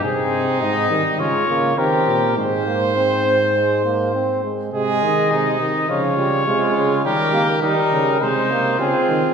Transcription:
X:1
M:4/4
L:1/8
Q:1/4=103
K:Ab
V:1 name="Trumpet"
A2 e2 d2 B2 | c6- c z | e4 d4 | B2 B2 c2 A2 |]
V:2 name="Trumpet"
E4 F2 G2 | c6- c z | A2 E2 F2 F2 | G2 E2 E2 F2 |]
V:3 name="Trombone" clef=bass
C3 G, A, B, C2 | A, B, C C A, B, C A, | A,3 E, F, G, A,2 | G, B, G,2 A, B, C2 |]
V:4 name="Bass trombone" clef=bass
C,2 A,, E, D, D, E, B,, | A,,6- A,, z | C, E, C, C, D,2 C, D, | E,2 E, D, C,2 D, E, |]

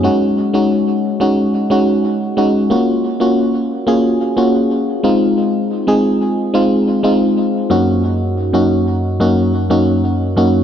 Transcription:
X:1
M:4/4
L:1/16
Q:1/4=90
K:Ebdor
V:1 name="FM electric piano"
[A,DEG]3 [A,DEG]3 z [A,DEG]3 [A,DEG]3 z [A,DEG]2 | [B,DFG]3 [B,DFG]3 z [B,DFA]3 [B,DFG]3 z [A,CEF]2- | [A,CEF]2 z [A,CEA]3 z [A,CEF]3 [A,CEF]3 z [G,,B,DEG]2- | [G,,B,DEG]2 z [G,,B,DEG]3 z [G,,B,DEG]3 [G,,B,DEG]3 z [G,,B,DEG]2 |]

